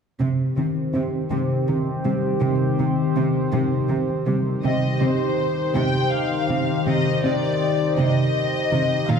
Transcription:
0.20 cello section C3, synth arpeggio sound C3, analog synth pad D#3 C4 G4 C5
0.57 cello section C3, synth arpeggio sound D#3
0.94 cello section C3, synth arpeggio sound C4
1.31 synth arpeggio sound C3, cello section C3
1.68 cello section C3, synth arpeggio sound D#3
2.05 cello section C3, synth arpeggio sound G3
2.41 cello section C3, synth arpeggio sound C3
2.79 cello section C3, synth arpeggio sound D#3
3.16 cello section C3, synth arpeggio sound C4
3.52 cello section C3, synth arpeggio sound C3
3.89 cello section C3, synth arpeggio sound D#3
4.27 cello section C3, synth arpeggio sound G3
4.64 cello section C3, synth arpeggio sound C3, analog synth pad D#3 D#4 G4 C5, violin section D#5
5.01 cello section C3, synth arpeggio sound C4, violin section C5
5.75 cello section C3, synth arpeggio sound C3, violin section G5
6.13 violin section F5
6.50 cello section C3, synth arpeggio sound D#3
6.86 cello section C3, synth arpeggio sound C3, violin section D#5
7.24 cello section C3, synth arpeggio sound C4, violin section D5
7.97 synth arpeggio sound C3, cello section C3, violin section D#5
8.72 cello section C3, synth arpeggio sound D#3
9.09 cello section A#2, analog synth pad D#3 D#4 F4 A#4, synth arpeggio sound D#3, violin section F5

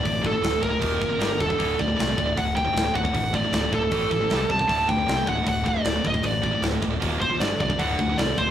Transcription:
Already playing: lead electric guitar D5
0.02 fingered electric bass A1, distorted electric guitar D2 A2, kick, open hi-hat
0.22 distorted electric guitar D2 A2, kick
0.26 lead electric guitar A4
0.32 distorted electric guitar D2 A2
0.42 fingered electric bass D1, distorted electric guitar D2 A2, snare, open hi-hat
0.52 distorted electric guitar D2 A2
0.61 fingered electric bass D1, distorted electric guitar D2 A2, lead electric guitar A#4, kick
0.71 distorted electric guitar D2 A2
0.82 fingered electric bass D#1, distorted electric guitar D#2 A#2 D#3, kick, open hi-hat
1.00 fingered electric bass F#1, distorted electric guitar D#2 A#2, kick
1.09 distorted electric guitar D#2 A#2
1.20 fingered electric bass G1, distorted electric guitar G2 D3 G3, snare, open hi-hat
1.30 distorted electric guitar G2 D3
1.39 fingered electric bass D#1, distorted electric guitar G2 D3, lead electric guitar A4, kick
1.48 distorted electric guitar G2 D3, kick
1.57 fingered electric bass D1, distorted electric guitar D2 A2 D3, kick, open hi-hat
1.77 distorted electric guitar D2 A2, fingered electric bass D2, lead electric guitar D5, kick
1.87 distorted electric guitar D2 A2
1.96 fingered electric bass C2, distorted electric guitar D2 A2, snare, open hi-hat
2.06 distorted electric guitar D2 A2
2.16 fingered electric bass D1, distorted electric guitar D2 A2, kick
2.26 distorted electric guitar D2 A2
2.36 fingered electric bass D1, distorted electric guitar D2 A2, lead electric guitar F#5, kick, open hi-hat
2.55 distorted electric guitar D2 A2, lead electric guitar G5, kick
2.65 distorted electric guitar D2 A2
2.74 fingered electric bass D1, distorted electric guitar D2 A2, snare, open hi-hat
2.84 distorted electric guitar D2 A2
2.93 fingered electric bass D1, distorted electric guitar D2 A2, lead electric guitar F#5, kick
3.03 distorted electric guitar D2 A2, kick
3.14 fingered electric bass A1, distorted electric guitar D2 A2, kick, open hi-hat
3.32 distorted electric guitar D2 A2, lead electric guitar D5, kick
3.41 distorted electric guitar D2 A2
3.51 fingered electric bass D1, distorted electric guitar D2 A2, lead electric guitar D5, snare, open hi-hat
3.61 distorted electric guitar D2 A2
3.71 fingered electric bass D1, distorted electric guitar D2 A2, lead electric guitar A4, kick
3.81 distorted electric guitar D2 A2
3.91 fingered electric bass A1, distorted electric guitar A2 E3 A3, kick, open hi-hat
4.10 fingered electric bass A1, distorted electric guitar A2 E3, kick
4.20 distorted electric guitar A2 E3
4.28 fingered electric bass C2, distorted electric guitar C3 G3 C4, snare, open hi-hat
4.39 distorted electric guitar C3 G3
4.49 fingered electric bass C2, distorted electric guitar C3 G3, lead electric guitar A5, kick
4.58 distorted electric guitar C3 G3, kick
4.66 fingered electric bass D1, distorted electric guitar D2 A2 D3, lead electric guitar A5, kick, open hi-hat
4.87 distorted electric guitar D2 A2, fingered electric bass D2, lead electric guitar G5, kick
4.97 distorted electric guitar D2 A2
5.06 fingered electric bass C2, distorted electric guitar D2 A2, snare, open hi-hat
5.15 distorted electric guitar D2 A2
5.24 fingered electric bass D1, distorted electric guitar D2 A2, kick
5.29 lead electric guitar F#5
5.35 distorted electric guitar D2 A2
5.44 fingered electric bass D1, distorted electric guitar D2 A2, kick, open hi-hat
5.48 lead electric guitar F#5
5.65 distorted electric guitar D2 A2, lead electric guitar D5, kick
5.75 distorted electric guitar D2 A2
5.84 fingered electric bass D1, distorted electric guitar D2 A2, snare, open hi-hat
5.94 distorted electric guitar D2 A2
6.03 fingered electric bass D1, distorted electric guitar D2 A2, kick
6.07 lead electric guitar D#5
6.13 distorted electric guitar D2 A2, kick
6.23 fingered electric bass A1, distorted electric guitar D2 A2, lead electric guitar D5, kick, open hi-hat
6.43 distorted electric guitar D2 A2, kick
6.52 distorted electric guitar D2 A2
6.62 fingered electric bass D1, distorted electric guitar D2 A2, snare, open hi-hat
6.72 distorted electric guitar D2 A2
6.82 fingered electric bass D1, distorted electric guitar D2 A2, kick
6.92 distorted electric guitar D2 A2
7.02 fingered electric bass D#1, distorted electric guitar D#2 A#2 D#3, kick, open hi-hat
7.20 fingered electric bass F#1, distorted electric guitar D#2 A#2, lead electric guitar C5, kick
7.32 distorted electric guitar D#2 A#2
7.40 fingered electric bass G1, distorted electric guitar G2 D3 G3, lead electric guitar D5, snare, open hi-hat
7.51 distorted electric guitar G2 D3
7.60 fingered electric bass C2, distorted electric guitar G2 D3, lead electric guitar D5, kick
7.70 distorted electric guitar G2 D3, kick
7.79 fingered electric bass D1, distorted electric guitar D2 A2 D3, lead electric guitar F#5, kick, open hi-hat
7.99 fingered electric bass D2, distorted electric guitar D2 A2, kick
8.08 distorted electric guitar D2 A2
8.18 fingered electric bass C2, distorted electric guitar D2 A2, lead electric guitar D5, snare, open hi-hat
8.27 distorted electric guitar D2 A2
8.38 fingered electric bass D1, distorted electric guitar D2 A2, lead electric guitar C5, kick

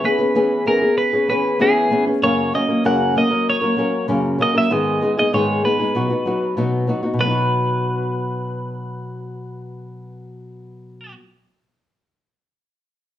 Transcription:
0.04 nylon-string guitar E3 B3 C#4 G#4, clean electric guitar B4
0.19 nylon-string guitar B3 C#4 G#4
0.35 nylon-string guitar E3 B3 C#4 G#4
0.66 nylon-string guitar E3 B3 C#4 G#4, clean electric guitar A#4
0.82 nylon-string guitar B3 C#4 G#4
0.98 clean electric guitar B4
1.13 nylon-string guitar B3 C#4 G#4
1.28 nylon-string guitar E3 B3 C#4 G#4, clean electric guitar B4
1.59 nylon-string guitar E3 B3 C#4 G#4, clean electric guitar G#4
1.91 nylon-string guitar E3 B3 C#4 G#4
2.06 nylon-string guitar B3 C#4 G#4
2.22 nylon-string guitar F#2 C#3 F#3 A#3 C#4 A#4, clean electric guitar C#5
2.53 nylon-string guitar F#3 A#3 C#4 A#4, clean electric guitar D#5
2.68 nylon-string guitar F#3 A#3 C#4 A#4
2.84 nylon-string guitar F#2 C#3 F#3 A#3 C#4 A#4, clean electric guitar F#5
3.15 nylon-string guitar F#3 A#3 C#4 A#4, clean electric guitar D#5
3.31 nylon-string guitar F#3 A#3 C#4 A#4
3.50 clean electric guitar C#5
3.61 nylon-string guitar F#3 A#3 C#4 A#4
3.77 nylon-string guitar F#3 A#3 C#4 A#4
4.08 nylon-string guitar F#2 C#3 F#3 A#3 C#4 A#4
4.39 nylon-string guitar F#3 A#3 C#4 A#4, clean electric guitar D#5
4.55 nylon-string guitar F#3 A#3 C#4 A#4, clean electric guitar E5
4.70 nylon-string guitar G#2 D#3 G#3 B3 D#4 G#4, clean electric guitar D#5
5.01 nylon-string guitar G#3 B3 D#4 G#4
5.17 nylon-string guitar G#3 B3 D#4 G#4, clean electric guitar D#5
5.33 nylon-string guitar G#2 D#3 G#3 B3 D#4 G#4, clean electric guitar C#5
5.64 nylon-string guitar G#3 B3 D#4 G#4, clean electric guitar B4
5.79 nylon-string guitar G#3 B3 D#4 G#4
5.95 nylon-string guitar B2 F#3 B3 D#4 F#4
6.10 nylon-string guitar B3 D#4 F#4
6.26 nylon-string guitar F#3 B3 D#4 F#4
6.57 nylon-string guitar B2 F#3 B3 D#4 F#4
6.87 nylon-string guitar F#3 B3 D#4 F#4
7.03 nylon-string guitar B3 D#4 F#4
7.14 nylon-string guitar B2
7.19 nylon-string guitar F#3, clean electric guitar B4
7.23 nylon-string guitar B3
7.27 nylon-string guitar D#4 F#4

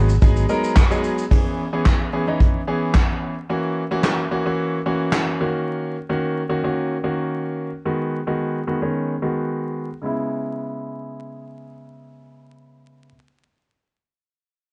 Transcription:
Already playing: fingered electric bass G#1, grand piano F#3 G#3 B3 D#4 G#4
0.09 closed hi-hat, shaker
0.22 fingered electric bass G#1, grand piano F#3 G#3 B3 D#4 G#4, kick, closed hi-hat, shaker
0.36 closed hi-hat, shaker
0.49 grand piano F#3 G#3 B3 D#4 A#4, open hi-hat, shaker
0.64 closed hi-hat, shaker
0.76 kick, snare, clap, closed hi-hat, shaker
0.91 grand piano F#3 G#3 B3 D#4 G#4, closed hi-hat, shaker
1.04 open hi-hat, shaker
1.18 closed hi-hat, shaker
1.31 grand piano E3 B3 C#4 G#4, kick, crash
1.73 grand piano E3 B3 C#4 G#4
1.85 kick, snare, clap
2.13 grand piano E3 B3 C#4 G#4
2.27 grand piano E3 B3 C#4 D#4
2.40 kick
2.67 grand piano E3 B3 C#4 G#4
2.94 kick, snare, clap
3.49 grand piano E3 A#3 C#4 F#4
3.91 grand piano E3 A#3 C#4 F#4
4.03 snare, clap
4.31 grand piano E3 A#3 C#4 F#4
4.46 grand piano E3 A#3 C#4 F#4
4.86 grand piano E3 A#3 C#4 F#4
5.12 snare, clap
5.40 grand piano D#3 A#3 C#4 F#4
6.09 grand piano D#3 A#3 C#4 F#4
6.49 grand piano D#3 A#3 C#4 F#4
6.64 grand piano D#3 A#3 C#4 F#4
7.04 grand piano D#3 A#3 C#4 F#4
7.85 grand piano D#3 G#3 B3 F#4
8.27 grand piano D#3 G#3 B3 F#4
8.67 grand piano D#3 G#3 B3 F#4
8.82 grand piano D#3 G#3 B3 C#4
9.22 grand piano D#3 G#3 B3 F#4
10.02 grand piano C#3 G#3 B3 E4

